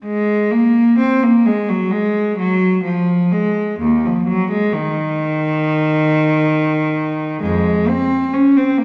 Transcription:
0.05 0.49 G#3 medium
0.51 0.99 A#3 medium
0.99 1.22 C4 medium
1.23 1.46 A#3 medium
1.46 1.69 G#3 medium
1.69 1.93 F#3 medium
1.91 2.38 G#3 medium
2.39 2.83 F#3 medium
2.85 3.30 F3 medium
3.32 3.80 G#3 medium
3.81 4.04 D#2 medium
4.06 4.28 F3 medium
4.28 4.50 F#3 medium
4.52 4.73 G#3 medium
4.73 7.43 D#3 medium
7.42 7.85 F2 medium
7.42 7.87 G#3 medium
7.88 8.34 C4 medium
8.33 8.56 C#4 medium
8.57 8.80 C4 medium
8.78 8.84 A#3 medium

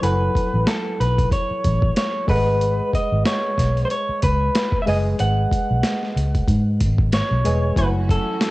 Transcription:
0.01 0.28 F#1 medium
0.01 2.23 F#3 medium
0.01 2.24 E4 medium
0.01 2.25 A4 medium
0.01 0.69 B4 medium
0.01 2.25 F#5 medium
0.01 2.24 G#5 medium
0.01 closed hi-hat medium
0.35 kick medium
0.35 closed hi-hat medium
0.54 0.64 A1 medium
0.67 1.00 A4 medium
0.67 snare loud
0.67 closed hi-hat medium
1.00 1.25 B1 medium
1.00 1.32 B4 medium
1.00 closed hi-hat medium
1.18 kick medium
1.18 closed hi-hat soft
1.31 1.97 C#5 medium
1.31 kick medium
1.31 closed hi-hat medium
1.51 muted fingered electric bass stroke soft
1.64 1.90 A1 medium
1.64 kick medium
1.64 closed hi-hat medium
1.82 kick medium
1.96 2.29 C#5 loud
1.96 snare loud
1.96 closed hi-hat medium
2.27 2.80 G#1 medium
2.27 4.82 G#3 medium
2.27 4.82 G#4 medium
2.27 2.36 A4 medium
2.27 2.95 B4 medium
2.27 4.83 D#5 medium
2.27 4.83 F#5 medium
2.27 kick loud
2.27 open hi-hat medium
2.35 4.86 B4 medium
2.61 closed hi-hat medium
2.93 3.26 D#5 medium
2.93 kick medium
2.93 closed hi-hat medium
3.12 3.23 G#1 medium
3.26 3.85 C#5 medium
3.26 snare loud
3.26 closed hi-hat medium
3.58 3.83 B1 medium
3.58 kick medium
3.58 snare soft
3.58 closed hi-hat medium
3.77 closed hi-hat soft
3.85 3.90 C5 medium
3.90 4.23 C#5 loud
3.90 closed hi-hat medium
4.09 muted fingered electric bass stroke soft
4.22 4.48 C#2 loud
4.22 4.82 B4 medium
4.22 kick medium
4.22 closed hi-hat medium
4.55 snare loud
4.55 closed hi-hat medium
4.72 kick loud
4.82 7.40 G#3 medium
4.82 4.87 E5 medium
4.86 5.13 F#1 medium
4.86 7.40 G#4 medium
4.86 7.41 B4 medium
4.86 4.97 D#5 medium
4.86 7.41 D#5 medium
4.86 7.42 G#5 medium
4.86 open hi-hat medium
5.19 5.45 G#1 medium
5.19 7.09 F#5 loud
5.19 closed hi-hat medium
5.51 kick medium
5.51 closed hi-hat medium
5.70 5.81 B1 medium
5.83 snare loud
5.83 closed hi-hat medium
6.03 snare soft
6.16 6.41 C#2 medium
6.16 closed hi-hat medium
6.35 kick medium
6.35 closed hi-hat soft
6.48 6.83 G#2 loud
6.48 kick medium
6.48 closed hi-hat medium
6.81 7.21 G#1 medium
6.81 kick medium
6.81 closed hi-hat medium
6.98 kick loud
7.13 7.78 C#5 medium
7.13 snare loud
7.13 closed hi-hat medium
7.31 7.42 B1 medium
7.45 7.70 E1 medium
7.45 7.77 G#3 medium
7.45 7.77 G#4 medium
7.45 7.77 B4 medium
7.45 7.77 D#5 medium
7.45 7.76 G#5 medium
7.45 closed hi-hat medium
7.76 8.17 F#1 loud
7.76 8.51 E3 medium
7.76 8.51 F#3 medium
7.76 8.51 A3 medium
7.76 8.51 C#4 medium
7.76 8.51 E4 medium
7.76 8.51 F#4 medium
7.76 7.87 B4 medium
7.76 7.85 E5 medium
7.76 8.51 G#5 medium
7.76 kick medium
7.76 closed hi-hat medium
7.86 8.51 F#5 medium
8.09 8.51 A4 medium
8.09 kick medium
8.09 closed hi-hat medium
8.41 snare loud
8.41 closed hi-hat medium

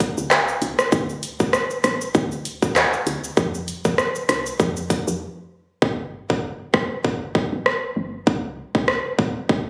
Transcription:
0.00 kick medium
0.00 closed hi-hat medium
0.00 shaker medium
0.18 0.41 D2 medium
0.18 shaker medium
0.31 cross-stick loud
0.31 clap loud
0.31 shaker medium
0.48 shaker medium
0.62 0.75 C2 medium
0.62 closed hi-hat medium
0.62 shaker medium
0.79 cross-stick loud
0.79 shaker medium
0.92 1.28 D2 loud
0.92 kick loud
0.92 shaker medium
1.09 shaker medium
1.23 closed hi-hat medium
1.23 shaker medium
1.40 1.50 D2 medium
1.40 kick medium
1.40 shaker medium
1.53 cross-stick loud
1.53 shaker medium
1.70 shaker medium
1.84 2.07 A1 loud
1.84 cross-stick medium
1.84 closed hi-hat medium
1.84 shaker medium
2.01 shaker medium
2.15 2.51 D2 loud
2.15 kick loud
2.15 shaker medium
2.32 shaker medium
2.45 closed hi-hat medium
2.45 shaker medium
2.62 2.85 D#2 medium
2.62 kick medium
2.62 shaker medium
2.76 cross-stick loud
2.76 clap loud
2.76 shaker medium
2.93 shaker medium
3.07 3.19 D2 medium
3.07 closed hi-hat medium
3.07 shaker medium
3.24 shaker medium
3.37 3.73 F2 loud
3.37 kick loud
3.37 shaker medium
3.54 shaker medium
3.68 closed hi-hat medium
3.68 shaker medium
3.85 3.95 F2 medium
3.85 kick medium
3.85 shaker medium
3.98 cross-stick loud
3.98 shaker medium
4.15 shaker medium
4.29 4.52 C2 medium
4.29 cross-stick medium
4.29 closed hi-hat medium
4.29 shaker medium
4.46 shaker medium
4.60 4.96 F2 loud
4.60 kick loud
4.60 shaker medium
4.77 shaker medium
4.90 kick medium
4.90 closed hi-hat medium
4.90 shaker medium
5.07 5.18 F2 medium
5.07 shaker medium
5.82 6.18 G1 loud
5.82 kick loud
6.30 6.53 G1 medium
6.30 kick medium
6.74 6.87 F1 medium
6.74 kick loud
6.74 cross-stick medium
7.05 7.40 G1 loud
7.05 kick loud
7.35 kick medium
7.52 7.85 A1 medium
7.66 cross-stick medium
7.96 8.19 G1 medium
8.27 8.63 C2 loud
8.27 kick loud
8.75 8.98 C2 loud
8.75 kick medium
8.88 cross-stick loud
9.19 9.32 A#1 loud
9.19 kick loud
9.49 9.70 C2 loud
9.49 kick loud

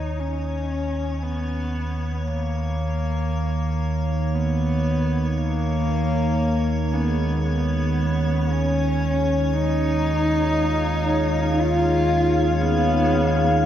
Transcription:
0.00 13.66 D#2 medium
0.00 13.66 D#3 medium
0.00 0.21 D#4 medium
0.00 13.66 C#5 medium
0.20 1.24 C#4 medium
1.23 2.28 B3 medium
2.27 4.36 A#3 medium
4.34 5.39 B3 medium
5.38 6.93 A#3 medium
5.43 13.66 D#4 medium
6.86 13.66 G#4 medium
6.91 7.45 B3 medium
6.91 6.95 C#4 medium
7.46 8.52 B3 medium
7.93 13.66 C#5 medium
8.51 9.55 C#4 medium
9.53 11.61 D#4 loud
10.29 13.66 F5 medium
11.60 12.63 F4 medium
12.61 13.65 B3 medium

